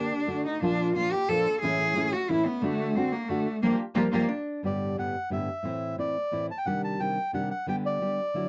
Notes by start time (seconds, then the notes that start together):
Already playing: D3 A#3 D4 G4
0.27 D3 A3 D4 F#4
0.46 D#4
0.61 A#2 F3 A#3 D4 F4
0.95 A#2 F3 A#3 D4 F4
1.12 G4
1.29 A#2 F3 A#3 D4 F4 A4
1.61 A2 E3 A3 C#4 E4 G#4
1.95 A2 E3 A3 C#4 E4
2.12 F#4
2.29 A2 E3 A3 C#4 E4
2.46 B3
2.62 D3 A3 D4 F#4
2.96 D3 A3 C4 D4 F#4
3.12 A#3
3.28 D3 A3 D4 F#4
3.62 F3 G3 A#3 D4 F4 G4
3.95 F3 G3 A#3 D4 F4 G4
4.11 F3 G3 A#3 D4 F4 G4
4.29 D4
4.63 G2 A2 D3 G3 B3 G4 D5
4.97 G2 A2 D3 G3 B3 G4 F#5
5.30 G2 A2 D3 G3 B3 G4 E5
5.63 A2 E3 A3 C4 E4
5.98 A2 E3 A3 C4 E4 D5
6.32 A2 E3 A3 C4 E4
6.51 A5
6.58 G5
6.65 C3 D#3 G3 D4 G4 F#5
6.84 A5
7.00 C3 D#3 G3 D4 G4 G5
7.33 C3 D#3 G3 D4 G4 F#5
7.51 F#5
7.67 D3 G3 B3 G4 G5
7.86 D5
8.01 D3 G3 B3 G4
8.34 D3 F#3 A3 E4 F#4